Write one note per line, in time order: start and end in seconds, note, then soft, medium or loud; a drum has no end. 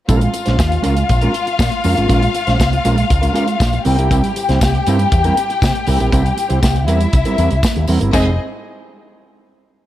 0.08 0.26 A#1 loud
0.08 0.29 G#3 medium
0.08 0.22 C#4 medium
0.08 0.21 F4 medium
0.08 3.82 F4 medium
0.08 0.20 A#4 medium
0.08 3.82 F5 medium
0.08 kick medium
0.08 closed hi-hat medium
0.08 tambourine medium
0.21 muted clean electric guitar stroke soft
0.21 closed hi-hat soft
0.33 muted clean electric guitar stroke soft
0.33 closed hi-hat medium
0.33 tambourine soft
0.46 0.56 A#1 medium
0.46 0.57 G#3 soft
0.46 0.58 C#4 medium
0.46 0.58 F4 soft
0.46 0.59 C5 medium
0.46 snare soft
0.46 closed hi-hat soft
0.59 0.76 D#2 medium
0.59 kick loud
0.59 snare loud
0.59 tambourine medium
0.70 muted clean electric guitar stroke soft
0.70 closed hi-hat soft
0.82 1.02 C#2 medium
0.82 1.03 G#3 medium
0.82 0.96 C#4 medium
0.82 0.95 F4 medium
0.82 0.95 A#4 medium
0.82 closed hi-hat medium
0.82 tambourine soft
0.96 muted clean electric guitar stroke soft
0.96 closed hi-hat soft
1.09 1.27 A#1 loud
1.09 muted clean electric guitar stroke soft
1.09 kick loud
1.09 closed hi-hat medium
1.09 tambourine soft
1.21 1.33 G#3 medium
1.21 1.33 C#4 medium
1.21 1.33 F4 medium
1.21 1.34 A#4 medium
1.21 closed hi-hat soft
1.34 closed hi-hat medium
1.34 tambourine soft
1.46 muted clean electric guitar stroke soft
1.46 closed hi-hat soft
1.58 1.68 A#2 medium
1.58 muted clean electric guitar stroke soft
1.58 kick loud
1.58 snare loud
1.58 tambourine medium
1.71 muted clean electric guitar stroke soft
1.71 closed hi-hat soft
1.84 1.93 F2 loud
1.84 1.97 G#3 medium
1.84 1.96 C#4 medium
1.84 1.96 F4 medium
1.84 1.96 A#4 medium
1.84 open hi-hat medium
1.84 tambourine medium
1.97 2.06 G#1 medium
1.97 2.07 G#3 soft
1.97 2.08 C#4 medium
1.97 2.09 F4 medium
1.97 2.09 A#4 medium
1.97 closed hi-hat soft
2.08 2.27 A#1 loud
2.08 2.29 G#3 medium
2.08 2.22 C#4 medium
2.08 2.22 F4 medium
2.08 2.21 A#4 medium
2.08 kick loud
2.08 closed hi-hat medium
2.08 tambourine medium
2.22 muted clean electric guitar stroke soft
2.22 closed hi-hat soft
2.34 muted clean electric guitar stroke soft
2.34 closed hi-hat medium
2.34 tambourine medium
2.47 2.56 A#1 medium
2.47 2.58 G#3 medium
2.47 2.59 C#4 medium
2.47 2.59 F4 medium
2.47 2.60 C5 medium
2.47 snare soft
2.47 closed hi-hat soft
2.59 2.77 C2 medium
2.59 muted clean electric guitar stroke soft
2.59 kick loud
2.59 snare loud
2.59 tambourine medium
2.73 muted clean electric guitar stroke soft
2.73 closed hi-hat soft
2.85 3.02 A#1 medium
2.85 3.05 G#3 medium
2.85 2.97 C#4 medium
2.85 2.96 F4 loud
2.85 2.96 A#4 medium
2.85 closed hi-hat medium
2.85 tambourine soft
2.97 muted clean electric guitar stroke soft
2.97 closed hi-hat soft
3.10 3.28 C#2 loud
3.10 muted clean electric guitar stroke soft
3.10 kick loud
3.10 closed hi-hat medium
3.22 3.33 G#3 medium
3.22 3.33 C#4 medium
3.22 3.34 F4 medium
3.22 3.34 A#4 medium
3.22 closed hi-hat medium
3.34 3.55 G#3 medium
3.34 3.47 C#4 medium
3.34 3.47 F4 medium
3.34 3.47 A#4 medium
3.34 closed hi-hat medium
3.34 tambourine soft
3.48 muted clean electric guitar stroke soft
3.48 closed hi-hat soft
3.60 3.77 A#1 medium
3.60 muted clean electric guitar stroke soft
3.60 kick loud
3.60 snare loud
3.60 tambourine medium
3.73 muted clean electric guitar stroke soft
3.73 closed hi-hat soft
3.85 4.20 C2 loud
3.85 3.98 G3 medium
3.85 3.98 C4 medium
3.85 3.98 E4 medium
3.85 6.84 G4 medium
3.85 3.98 A#4 medium
3.85 6.84 G5 medium
3.85 open hi-hat medium
3.85 tambourine medium
3.99 4.09 G3 soft
3.99 4.09 C4 medium
3.99 4.10 E4 medium
3.99 4.10 A#4 medium
3.99 closed hi-hat soft
4.10 4.31 G3 medium
4.10 4.23 C4 medium
4.10 4.23 E4 medium
4.10 4.23 A#4 medium
4.10 kick loud
4.10 closed hi-hat medium
4.10 tambourine medium
4.24 muted clean electric guitar stroke soft
4.24 closed hi-hat soft
4.36 muted clean electric guitar stroke soft
4.36 closed hi-hat medium
4.36 tambourine soft
4.49 4.57 C2 medium
4.49 4.60 G3 medium
4.49 4.61 C4 medium
4.49 4.61 E4 medium
4.49 4.62 C5 medium
4.49 snare soft
4.49 closed hi-hat soft
4.61 4.79 C2 medium
4.61 kick loud
4.61 snare loud
4.61 tambourine loud
4.75 muted clean electric guitar stroke soft
4.75 closed hi-hat soft
4.87 5.04 G2 medium
4.87 5.07 G3 medium
4.87 5.00 C4 loud
4.87 4.99 E4 loud
4.87 4.99 A#4 loud
4.87 closed hi-hat medium
4.87 tambourine medium
4.99 muted clean electric guitar stroke soft
4.99 closed hi-hat soft
5.12 5.29 E2 medium
5.12 muted clean electric guitar stroke soft
5.12 kick loud
5.12 closed hi-hat medium
5.12 tambourine soft
5.24 5.36 G3 medium
5.24 5.37 C4 medium
5.24 5.37 E4 medium
5.24 5.37 A#4 medium
5.24 closed hi-hat medium
5.37 muted clean electric guitar stroke soft
5.37 closed hi-hat medium
5.50 muted clean electric guitar stroke soft
5.50 closed hi-hat soft
5.62 5.71 C3 medium
5.62 muted clean electric guitar stroke soft
5.62 kick loud
5.62 snare loud
5.62 tambourine medium
5.75 muted clean electric guitar stroke soft
5.75 closed hi-hat soft
5.87 5.96 C2 loud
5.87 6.00 G3 medium
5.87 5.99 C4 medium
5.87 5.99 E4 medium
5.87 5.99 A#4 medium
5.87 open hi-hat medium
5.87 tambourine medium
6.00 6.09 A#1 medium
6.00 6.11 G3 medium
6.00 6.12 C4 medium
6.00 6.12 E4 medium
6.00 6.12 A#4 medium
6.00 closed hi-hat soft
6.12 6.30 C2 loud
6.12 6.32 G3 medium
6.12 6.24 C4 medium
6.12 6.24 E4 medium
6.12 6.23 A#4 medium
6.12 kick loud
6.12 closed hi-hat medium
6.12 tambourine medium
6.24 muted clean electric guitar stroke soft
6.24 closed hi-hat soft
6.37 muted clean electric guitar stroke soft
6.37 closed hi-hat medium
6.37 tambourine medium
6.49 6.59 C2 medium
6.49 6.61 G3 soft
6.49 6.61 C4 medium
6.49 6.61 E4 medium
6.49 6.63 C5 medium
6.49 closed hi-hat soft
6.63 6.88 C2 medium
6.63 muted clean electric guitar stroke medium
6.63 kick loud
6.63 snare loud
6.63 tambourine medium
6.75 muted clean electric guitar stroke soft
6.75 closed hi-hat soft
6.87 7.05 E2 medium
6.87 7.08 G3 medium
6.87 7.00 C4 medium
6.87 7.00 E4 loud
6.87 7.87 E4 medium
6.87 6.99 A#4 loud
6.87 7.87 E5 medium
6.87 closed hi-hat medium
6.87 tambourine medium
7.00 muted clean electric guitar stroke soft
7.00 closed hi-hat soft
7.13 7.22 C2 medium
7.13 muted clean electric guitar stroke soft
7.13 kick loud
7.13 closed hi-hat medium
7.13 tambourine soft
7.25 7.37 G3 medium
7.25 7.38 C4 medium
7.25 7.38 E4 medium
7.25 7.39 A#4 medium
7.25 closed hi-hat soft
7.38 7.47 E2 medium
7.38 7.54 G3 medium
7.38 7.51 C4 medium
7.38 7.51 E4 medium
7.38 7.50 A#4 medium
7.38 closed hi-hat medium
7.38 tambourine soft
7.51 7.60 C2 medium
7.51 muted clean electric guitar stroke soft
7.51 closed hi-hat soft
7.63 muted clean electric guitar stroke soft
7.63 kick loud
7.63 snare loud
7.63 tambourine loud
7.75 7.85 D#2 loud
7.75 muted clean electric guitar stroke soft
7.75 closed hi-hat soft
7.88 7.97 E2 loud
7.88 8.01 G3 medium
7.88 8.00 C4 medium
7.88 8.00 E4 medium
7.88 7.99 A#4 medium
7.88 open hi-hat medium
7.88 tambourine medium
8.00 8.09 G1 medium
8.00 8.12 G3 medium
8.00 8.12 C4 medium
8.00 8.14 E4 medium
8.00 8.14 A#4 medium
8.00 closed hi-hat soft
8.13 8.37 F1 loud
8.13 8.28 G#3 medium
8.13 8.37 C4 medium
8.13 8.29 C4 medium
8.13 8.29 D#4 medium
8.13 8.37 G#4 medium
8.13 8.29 G#4 medium
8.13 8.37 D#5 loud
8.13 kick medium
8.13 crash medium
8.13 tambourine medium